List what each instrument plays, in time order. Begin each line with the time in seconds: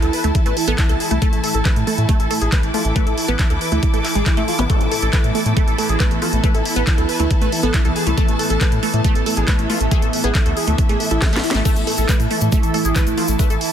Already playing: ambient pad E3 E4, string section E4 A4 A5
0.02 analog synth bass D2, analog synth lead E4, synth arpeggio sound A4, closed hi-hat
0.13 analog synth lead B4, open hi-hat
0.24 analog synth bass D2, synth arpeggio sound A3, analog synth lead E4, closed hi-hat
0.35 analog synth lead E4, kick, closed hi-hat
0.46 analog synth bass A1, synth arpeggio sound A3, analog synth lead B4, closed hi-hat
0.57 analog synth lead E4, open hi-hat
0.68 analog synth bass A1, synth arpeggio sound B3, analog synth lead A4, closed hi-hat
0.78 analog synth lead E4, kick, clap, closed hi-hat
0.89 analog synth bass C2, analog synth lead E4, synth arpeggio sound A4, closed hi-hat
1.00 analog synth lead G#4, open hi-hat
1.11 analog synth bass C2, synth arpeggio sound A3, analog synth lead E4, closed hi-hat
1.22 synth arpeggio sound A3, analog synth lead A4, kick, closed hi-hat
1.33 analog synth bass A1, analog synth lead A3, closed hi-hat
1.44 analog synth lead A3, synth arpeggio sound A4, open hi-hat
1.55 analog synth bass A1, analog synth lead A4, closed hi-hat
1.65 analog synth lead A3, synth arpeggio sound B4, kick, clap, closed hi-hat
1.76 analog synth bass A2, analog synth lead A3, closed hi-hat
1.87 synth arpeggio sound A3, analog synth lead A4, open hi-hat
1.98 analog synth bass A2, analog synth lead A3, closed hi-hat
2.09 synth arpeggio sound A3, analog synth lead A3, kick, closed hi-hat
2.20 analog synth bass A1, analog synth lead A4, closed hi-hat
2.31 analog synth lead A3, synth arpeggio sound A4, open hi-hat
2.42 analog synth bass A1, analog synth lead G#4, closed hi-hat
2.52 analog synth lead A3, synth arpeggio sound B4, kick, clap, closed hi-hat
2.62 analog synth bass A1, analog synth lead A3, string section D6, closed hi-hat
2.74 synth arpeggio sound A3, analog synth lead F4, open hi-hat
2.85 analog synth bass A1, analog synth lead A3, closed hi-hat
2.96 synth arpeggio sound A3, analog synth lead B4, kick, closed hi-hat
3.07 analog synth bass A1, analog synth lead E4, synth arpeggio sound A4, closed hi-hat
3.18 analog synth lead E4, open hi-hat
3.28 analog synth bass A1, synth arpeggio sound B3, analog synth lead B4, closed hi-hat
3.39 analog synth lead E4, kick, clap, closed hi-hat
3.50 analog synth bass D2, analog synth lead E4, synth arpeggio sound A4, closed hi-hat
3.61 analog synth lead B4, open hi-hat
3.72 analog synth bass D2, synth arpeggio sound A3, analog synth lead E4, closed hi-hat
3.83 analog synth lead E4, kick, closed hi-hat
3.94 analog synth bass A1, synth arpeggio sound A3, analog synth lead A4, closed hi-hat
4.05 analog synth lead E4, clap, open hi-hat
4.15 analog synth bass A1, synth arpeggio sound G#3, analog synth lead G#4, closed hi-hat
4.26 analog synth lead E4, kick, clap, closed hi-hat
4.37 analog synth bass A1, synth arpeggio sound A3, analog synth lead E4, closed hi-hat
4.48 analog synth lead F4, open hi-hat
4.59 analog synth bass A1, synth arpeggio sound B3, analog synth lead E4, closed hi-hat, zap
4.70 synth arpeggio sound A3, ambient pad B3, analog synth lead A4, kick, closed hi-hat
4.81 analog synth bass A1, analog synth lead A3, closed hi-hat
4.91 analog synth lead A3, synth arpeggio sound A4, open hi-hat
5.02 analog synth bass A1, analog synth lead A4, closed hi-hat
5.13 analog synth lead A3, synth arpeggio sound B4, kick, clap, closed hi-hat
5.24 analog synth bass A2, analog synth lead A3, closed hi-hat
5.35 synth arpeggio sound A3, analog synth lead A4, open hi-hat
5.46 analog synth bass A2, analog synth lead A3, closed hi-hat
5.57 analog synth lead A3, synth arpeggio sound A3, kick, closed hi-hat
5.68 analog synth bass A1, analog synth lead A4, closed hi-hat
5.78 analog synth lead A3, synth arpeggio sound A4, open hi-hat
5.89 analog synth bass A1, analog synth lead G#4, closed hi-hat
6.00 analog synth lead A3, synth arpeggio sound B4, kick, clap, closed hi-hat
6.10 analog synth bass A1, analog synth lead A3, string section A5, closed hi-hat
6.22 synth arpeggio sound A3, analog synth lead F4, open hi-hat
6.33 analog synth bass A1, analog synth lead A3, closed hi-hat
6.44 synth arpeggio sound A3, analog synth lead B4, kick, closed hi-hat
6.54 analog synth bass A1, analog synth lead E4, synth arpeggio sound A4, closed hi-hat
6.65 analog synth lead E4, open hi-hat
6.76 analog synth bass A1, synth arpeggio sound B3, analog synth lead B4, closed hi-hat
6.87 analog synth lead E4, kick, clap, closed hi-hat
6.98 analog synth bass D2, analog synth lead E4, synth arpeggio sound A4, closed hi-hat
7.09 analog synth lead B4, open hi-hat
7.20 analog synth bass D2, synth arpeggio sound A3, analog synth lead E4, closed hi-hat
7.31 analog synth lead E4, kick, closed hi-hat
7.41 analog synth bass A1, synth arpeggio sound A3, analog synth lead B4, closed hi-hat
7.52 analog synth lead E4, open hi-hat
7.63 analog synth bass A1, synth arpeggio sound B3, analog synth lead A4, closed hi-hat
7.74 analog synth lead E4, kick, clap, closed hi-hat
7.85 analog synth bass C2, analog synth lead E4, synth arpeggio sound A4, closed hi-hat
7.96 analog synth lead G#4, open hi-hat
8.07 analog synth bass C2, synth arpeggio sound A3, analog synth lead E4, closed hi-hat
8.18 synth arpeggio sound A3, analog synth lead A4, kick, closed hi-hat
8.28 analog synth bass A1, analog synth lead A3, closed hi-hat
8.39 analog synth lead A3, synth arpeggio sound A4, open hi-hat
8.50 analog synth bass A1, analog synth lead A4, closed hi-hat
8.61 analog synth lead A3, synth arpeggio sound B4, kick, clap, closed hi-hat
8.72 analog synth bass A2, analog synth lead A3, closed hi-hat
8.83 synth arpeggio sound A3, analog synth lead A4, open hi-hat
8.94 analog synth bass A2, analog synth lead A3, closed hi-hat
9.04 synth arpeggio sound A3, analog synth lead A3, kick, closed hi-hat
9.15 analog synth bass A1, analog synth lead A4, closed hi-hat
9.26 analog synth lead A3, synth arpeggio sound A4, open hi-hat
9.37 analog synth bass A1, analog synth lead G#4, closed hi-hat
9.48 analog synth lead A3, synth arpeggio sound B4, kick, clap, closed hi-hat
9.58 analog synth bass A1, analog synth lead A3, string section E5, closed hi-hat
9.70 synth arpeggio sound A3, analog synth lead F4, open hi-hat
9.81 analog synth bass A1, analog synth lead A3, closed hi-hat
9.91 synth arpeggio sound A3, analog synth lead G#4, kick, closed hi-hat
10.02 analog synth bass A1, analog synth lead A3, synth arpeggio sound A4, closed hi-hat
10.13 analog synth lead A3, open hi-hat
10.24 analog synth bass A1, synth arpeggio sound B3, analog synth lead G#4, closed hi-hat
10.35 analog synth lead A3, kick, clap, closed hi-hat
10.46 analog synth bass D2, analog synth lead A3, synth arpeggio sound A4, closed hi-hat
10.57 analog synth lead G#4, open hi-hat
10.68 analog synth bass D2, analog synth lead A3, synth arpeggio sound A3, closed hi-hat
10.78 analog synth lead A3, kick, closed hi-hat
10.89 analog synth bass A1, synth arpeggio sound A3, analog synth lead G#4, closed hi-hat
11.00 analog synth lead A3, open hi-hat
11.11 analog synth bass A1, analog synth lead E4, synth arpeggio sound A4, closed hi-hat
11.22 analog synth lead A3, kick, snare, clap, closed hi-hat
11.33 analog synth bass A1, analog synth lead A3, synth arpeggio sound A3, snare, closed hi-hat
11.44 analog synth lead E4, open hi-hat
11.51 analog synth bass A1, analog synth lead A3, synth arpeggio sound A3, snare, closed hi-hat
11.65 ambient pad E3 E4, synth arpeggio sound A3, analog synth lead A4, kick, closed hi-hat, crash, shaker
11.76 analog synth bass A1, analog synth lead A3, closed hi-hat, shaker
11.87 analog synth lead A3, synth arpeggio sound A4, open hi-hat
11.98 analog synth bass A1, analog synth lead A4, closed hi-hat, shaker
12.09 analog synth lead A3, synth arpeggio sound B4, kick, clap, closed hi-hat, shaker
12.20 analog synth bass A2, analog synth lead A3, closed hi-hat, shaker
12.31 synth arpeggio sound A3, analog synth lead A4, open hi-hat
12.41 analog synth bass A2, analog synth lead A3, closed hi-hat, shaker
12.52 synth arpeggio sound A3, analog synth lead A3, kick, closed hi-hat, shaker
12.63 analog synth bass A1, analog synth lead A4, closed hi-hat, shaker
12.74 analog synth lead A3, synth arpeggio sound A4, open hi-hat
12.85 analog synth bass A1, analog synth lead G#4, closed hi-hat, shaker
12.96 analog synth lead A3, synth arpeggio sound B4, kick, clap, closed hi-hat, shaker
13.06 analog synth bass A1, analog synth lead A3, string section A5, closed hi-hat, shaker
13.18 synth arpeggio sound A3, analog synth lead F4, open hi-hat
13.28 analog synth bass A1, analog synth lead A3, closed hi-hat, shaker
13.39 synth arpeggio sound A3, analog synth lead B4, kick, closed hi-hat, shaker
13.50 analog synth bass A1, analog synth lead E4, synth arpeggio sound A4, closed hi-hat, shaker
13.61 analog synth lead E4, open hi-hat